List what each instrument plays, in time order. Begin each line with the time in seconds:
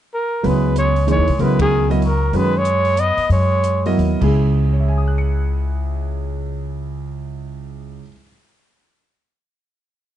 0.14 trumpet A#4
0.43 upright bass C#2, grand piano C#3 F#3 B3 E4 B4, trombone G#3, trumpet B4, open hi-hat
0.76 trombone G#3, trumpet C#5, closed hi-hat
0.96 open hi-hat
1.07 grand piano E3 A#3 D#4 G#4 C#5, trombone G#3, closed hi-hat
1.11 trumpet C#5
1.18 upright bass D#2
1.28 upright bass B1, open hi-hat
1.39 upright bass C#2, grand piano C#3 F#3 B3 E4 A#4, trombone G#3, trumpet B4, open hi-hat
1.59 trombone D#3, trumpet G#4, kick, ride
1.90 grand piano F#3 B3 E4 A#4 D#5, open hi-hat
2.02 trombone F#3, trumpet A#4, open hi-hat
2.33 upright bass F#2, grand piano D#3 G#3 C#4 F#4 B4, trombone G#3, trumpet B4, open hi-hat
2.58 trombone G#3, trumpet C#5
2.65 closed hi-hat
2.85 open hi-hat
2.97 trombone B3, trumpet D#5, closed hi-hat
3.17 muted upright bass stroke, open hi-hat
3.29 upright bass F#2, trombone G#3, trumpet C#5, open hi-hat
3.64 closed hi-hat
3.86 grand piano F#3 B3 E4 A#4 D#5, open hi-hat
3.98 upright bass D#2, open hi-hat
4.21 grand piano C#2 C#3 G#3 E4 G#4, upright bass C#2, kick, crash
4.73 grand piano C#5
4.80 grand piano E5
4.88 grand piano G#5
4.98 grand piano D#6
5.08 grand piano F#6
5.18 grand piano C#7